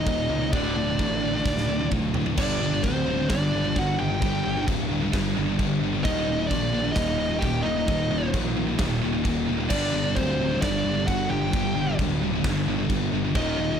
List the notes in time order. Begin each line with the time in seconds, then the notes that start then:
Already playing: D#2 A#2 D#3 D#4 D#5
0.06 D#1 D#2 A#2, kick, china
0.29 C#2 D#2 A#2
0.41 D#2 A#2
0.52 D1 D2 A2 D3 D4 D5, kick, china
0.76 D1 D2 A2
0.87 D2 A2
0.99 A1 D2 A2, kick, china
1.23 D2 A2
1.35 D2 A2
1.45 D1 D2 A2, kick, snare
1.57 snare
1.68 D1 D2 A2
1.79 D2 A2, high tom
1.91 D1 D2 A2, kick, mid tom
2.14 D1 D2 A2, floor tom
2.26 D2 A2, floor tom
2.37 G1 G2 D3 G3 D4 D5, kick, crash, china
2.61 G1 G2 D3
2.71 G2 D3
2.83 D1 G2 D3 C4 C5, kick, china
3.06 G2 D3
3.17 G2 D3
3.29 G1 G2 D3 D4 D5, kick, snare, china
3.53 G1 G2 D3
3.64 G2 D3
3.76 G1 G2 D3 F#4 F#5, kick, china
3.99 G1 G2 D3 G4 G5
4.10 G2 D3
4.22 G1 G2 D3 G3, kick, china
4.46 G1 G2 D3
4.57 G2 D3
4.68 D1 G2 D3, kick, china
4.91 G2 D3
5.03 G2 D3
5.13 G1 G2 D3, kick, snare, china
5.37 G1 G2 D3
5.48 G2 D3
5.59 G1 G2 D3, kick, china
5.82 G1 G2 D3
5.95 G2 D3
6.04 D#1 D#2 A#2 D#3 D#4 D#5, kick, china
6.28 D#1 D#2 A#2
6.40 D#2 A#2
6.47 D4 D5, kick, china
6.51 A#1 D#2 A#2
6.74 D#2 A#2
6.84 D#2 A#2
6.92 D#2 D#4 D#5, snare, china
6.96 D#1 A#2, kick
7.20 D#1 D#2 A#2
7.31 D#2 A#2
7.39 D#1 G4 G5, kick, china
7.43 D#2 A#2
7.61 D#4 D#5
7.65 D#1 D#2 A#2
7.77 D#2 A#2
7.88 D#1 D#2 A#2 D#3, kick, china
8.11 D#1 D#2 A#2
8.23 D#2 A#2
8.34 A#1 D#2 A#2, kick, china
8.57 D#2 A#2
8.68 D#2 A#2
8.79 D#1 D#2 A#2, kick, snare, china
9.04 D#1 D#2 A#2
9.15 D#2 A#2
9.25 D#1 D#2 A#2, kick, china
9.48 D#1 D#2 A#2
9.60 D#2 A#2
9.70 G1 G2 D3 G3 D4 D5, kick, china, crash
9.93 G1 G2 D3
10.06 G2 D3
10.16 D1 G2 D3 C4 C5, kick, china
10.42 G2 D3
10.53 G2 D3
10.62 G1 G2 D3 D4 D5, kick, snare, china
10.85 G1 G2 D3
10.95 D3
10.99 G2 D3
11.06 G1 G2 D3 F#4 F#5, kick, china
11.11 G2 D3
11.31 G1 G2 D3 G4 G5
11.44 G2 D3
11.53 G1 G2 D3 G3, kick, china
11.76 G1 G2 D3
11.89 G2 D3
11.99 D1 G2 D3, kick, china
12.24 G2 D3
12.35 G2 D3
12.44 G1 G2 D3, kick, snare, china
12.67 G1 G2 D3
12.78 G2 D3
12.90 G1 G2 D3, kick, china
13.12 G1 G2 D3
13.24 G2 D3
13.35 D#1 D#2 A#2 D#3 D#4 D#5, kick, china
13.58 D#1 D#2 A#2
13.71 D#2 A#2